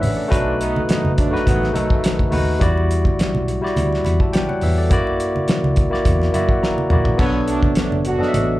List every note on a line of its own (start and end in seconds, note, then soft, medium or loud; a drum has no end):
0.00 0.16 A1 medium
0.00 0.28 A3 medium
0.00 0.29 C#4 loud
0.00 0.34 D4 loud
0.00 0.17 A4 medium
0.00 0.02 B4 loud
0.00 0.17 B4 medium
0.00 0.34 C#5 medium
0.00 0.17 D5 medium
0.00 0.02 E5 medium
0.00 0.17 E5 medium
0.00 0.34 F#5 medium
0.00 open hi-hat medium
0.00 high conga medium
0.00 low conga medium
0.17 0.45 A4 medium
0.17 0.45 D5 medium
0.28 0.78 B1 loud
0.28 0.54 F#3 medium
0.28 0.98 A3 loud
0.28 0.54 A3 medium
0.28 0.37 C#4 medium
0.28 0.54 D4 loud
0.28 0.99 F#4 loud
0.28 0.99 B4 loud
0.28 kick loud
0.32 1.01 D#4 medium
0.32 closed hi-hat loud
0.32 muted conga soft
0.60 0.83 A3 medium
0.60 0.83 B3 medium
0.60 0.83 D#4 medium
0.60 closed hi-hat medium
0.76 high conga medium
0.89 1.12 A3 medium
0.89 1.12 B3 medium
0.89 1.12 D#4 medium
0.89 muted fingered electric bass stroke soft
0.89 snare loud
0.89 closed hi-hat medium
0.89 muted conga soft
1.04 1.28 F#1 medium
1.04 high conga medium
1.17 1.40 F#3 medium
1.17 1.40 A3 medium
1.17 1.40 D4 medium
1.17 kick medium
1.17 closed hi-hat medium
1.17 low conga medium
1.31 1.61 A3 medium
1.31 1.61 D#4 medium
1.31 1.62 F#4 medium
1.31 1.62 B4 medium
1.36 snare soft
1.46 1.70 A1 medium
1.46 1.69 D#3 medium
1.46 1.69 F#3 medium
1.46 1.69 B3 loud
1.46 kick medium
1.46 closed hi-hat medium
1.46 muted conga soft
1.46 high conga medium
1.63 snare soft
1.63 muted conga soft
1.73 1.87 B1 medium
1.73 2.29 D#3 medium
1.73 2.29 F#3 medium
1.73 2.13 A3 medium
1.73 2.29 A3 medium
1.73 2.13 D#4 medium
1.73 2.14 F#4 medium
1.73 2.14 A4 medium
1.73 closed hi-hat medium
1.73 high conga medium
1.90 kick medium
2.04 snare loud
2.04 closed hi-hat loud
2.19 kick medium
2.19 high conga medium
2.30 2.55 D#2 medium
2.30 2.51 A3 medium
2.30 2.52 D#4 medium
2.30 2.52 F#4 medium
2.30 2.53 B4 medium
2.30 open hi-hat medium
2.30 high conga medium
2.30 low conga medium
2.59 3.08 E2 loud
2.59 3.28 G3 loud
2.59 3.28 E4 medium
2.59 3.29 F#4 medium
2.59 3.29 D5 loud
2.59 kick loud
2.59 closed hi-hat loud
2.77 muted conga soft
2.91 closed hi-hat medium
3.05 kick loud
3.05 high conga medium
3.19 muted fingered electric bass stroke soft
3.19 snare loud
3.19 closed hi-hat medium
3.19 muted conga soft
3.34 3.58 B1 medium
3.34 muted conga soft
3.34 high conga medium
3.48 closed hi-hat medium
3.48 low conga medium
3.61 4.38 G3 medium
3.61 4.38 E4 medium
3.61 4.39 F#4 medium
3.61 4.05 D5 medium
3.66 snare soft
3.76 3.99 D2 medium
3.76 closed hi-hat medium
3.76 muted conga soft
3.76 high conga medium
3.93 snare soft
3.93 muted conga soft
4.04 4.18 E2 medium
4.04 4.20 F#5 medium
4.04 4.19 B5 medium
4.04 closed hi-hat medium
4.04 high conga medium
4.20 4.33 E5 medium
4.20 4.33 A5 medium
4.20 kick medium
4.33 4.48 D5 medium
4.33 4.48 G5 medium
4.33 snare loud
4.33 closed hi-hat medium
4.33 muted conga soft
4.49 4.61 C#5 medium
4.49 4.61 F#5 medium
4.49 high conga medium
4.61 4.91 E2 medium
4.61 4.77 B4 medium
4.61 4.77 E5 medium
4.61 open hi-hat medium
4.61 high conga medium
4.61 low conga medium
4.78 5.05 A4 medium
4.78 4.92 D5 medium
4.90 5.37 F#2 loud
4.90 5.58 A#3 loud
4.90 5.58 E4 medium
4.90 5.59 F#4 loud
4.90 5.59 D5 loud
4.90 kick loud
4.90 closed hi-hat loud
4.90 muted conga soft
5.07 muted conga soft
5.20 closed hi-hat medium
5.36 high conga medium
5.48 muted fingered electric bass stroke soft
5.48 snare loud
5.48 closed hi-hat medium
5.48 muted conga soft
5.63 5.87 C#2 medium
5.63 muted conga soft
5.63 high conga medium
5.76 kick medium
5.76 closed hi-hat medium
5.76 low conga medium
5.90 6.20 A#3 medium
5.90 6.20 E4 medium
5.90 6.21 F#4 medium
5.90 6.21 D5 medium
5.90 snare soft
6.05 6.29 E2 medium
6.05 kick medium
6.05 closed hi-hat medium
6.05 high conga medium
6.22 snare soft
6.22 muted conga soft
6.32 6.46 F#2 medium
6.32 6.72 A#3 medium
6.32 6.73 E4 medium
6.32 6.73 F#4 medium
6.32 6.74 D5 medium
6.32 6.48 E5 medium
6.32 closed hi-hat medium
6.32 high conga medium
6.49 6.62 F#5 medium
6.49 kick medium
6.63 7.16 A#5 medium
6.63 snare medium
6.63 muted conga soft
6.78 muted conga soft
6.78 high conga medium
6.90 7.15 A#1 medium
6.90 7.10 A#3 medium
6.90 7.11 E4 medium
6.90 7.11 F#4 medium
6.90 7.12 D5 medium
6.90 mid tom medium
6.90 high conga medium
6.90 low conga medium
7.05 floor tom medium
7.18 7.66 B1 loud
7.18 7.43 D3 loud
7.18 7.42 F#3 loud
7.18 7.86 B3 loud
7.18 7.42 B3 loud
7.18 7.87 D4 medium
7.18 7.88 A4 medium
7.18 7.88 C#5 loud
7.18 kick loud
7.18 splash medium
7.18 muted conga soft
7.48 7.71 F#3 medium
7.48 7.71 A3 medium
7.48 7.71 D4 loud
7.48 closed hi-hat medium
7.63 kick medium
7.63 high conga medium
7.75 8.00 F#3 medium
7.75 8.00 A3 medium
7.75 8.00 D4 medium
7.75 muted fingered electric bass stroke soft
7.75 snare loud
7.75 closed hi-hat medium
7.92 8.15 F#1 medium
7.92 muted conga soft
7.92 high conga medium
8.05 8.60 F#3 medium
8.05 8.60 D4 medium
8.05 8.60 F#4 loud
8.05 closed hi-hat medium
8.05 low conga medium
8.19 8.60 B3 medium
8.19 8.60 D4 medium
8.19 8.60 A4 medium
8.19 8.27 D#5 medium
8.19 snare soft
8.28 8.60 E5 loud
8.34 8.60 A1 medium
8.34 closed hi-hat medium
8.34 muted conga soft
8.34 high conga medium